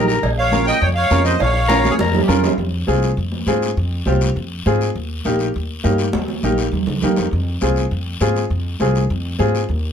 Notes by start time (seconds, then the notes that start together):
Already playing: A#1 D#4 G4 A#4
0.08 A#4, short guiro
0.23 A#1, cowbell, long guiro
0.38 C#5 F5
0.51 C#4 F4 A#4, high conga, short guiro
0.67 D#5 G5, short guiro
0.81 F2 C#5 G5, cowbell, long guiro
0.95 C#5 F5
1.10 F2 C#4 F4 A#4, high conga, low timbale, short guiro
1.24 C5 D#5, short guiro
1.40 A#1 C#5 F5, cowbell, high timbale, long guiro
1.69 C#4 F4 A#4, high conga, high timbale, short guiro
1.85 high conga, short guiro
1.91 G#4
1.99 F2 A#4, cowbell, high conga, long guiro
2.13 low conga, low timbale
2.23 G4
2.28 F2 C#4 F4 A#4, low conga, short guiro
2.43 low conga, low timbale, short guiro
2.58 F2, long guiro
2.87 C2 C4 F4 G#4, high conga, short guiro
3.02 short guiro
3.17 F2, long guiro
3.32 high conga
3.46 G#2 C4 F4 G#4, high conga, short guiro
3.62 short guiro
3.77 F2, long guiro
4.06 C2 C4 F4 G4, high conga, short guiro
4.21 short guiro
4.36 F2, long guiro
4.66 G#2 C4 F4 G#4, high conga, short guiro
4.81 short guiro
4.95 D#2, long guiro
5.25 A#1 A#3 D#4 G4, high conga, short guiro
5.39 short guiro
5.54 D#2, long guiro
5.84 G2 A#3 D#4 G4, high conga, short guiro
5.98 short guiro
6.13 D#2, high conga
6.28 high conga
6.43 A#1 A#3 D#4 G4, low conga, short guiro
6.58 short guiro
6.72 D#2, low conga, long guiro
6.87 C#2, low conga
7.02 D#2 A#3 D#4 G4, low conga, short guiro
7.16 F2, low conga, short guiro
7.31 F2, long guiro
7.61 C2 C4 F4 G#4, high conga, short guiro
7.76 short guiro
7.91 F2, long guiro
8.21 G#2 C4 F4 G#4, high conga, short guiro
8.36 short guiro
8.50 F2, long guiro
8.80 C2 C4 F4 G#4, high conga, short guiro
8.95 short guiro
9.10 F2, long guiro
9.39 G#2 C4 F4 G#4, high conga, short guiro
9.55 short guiro
9.69 D#2, long guiro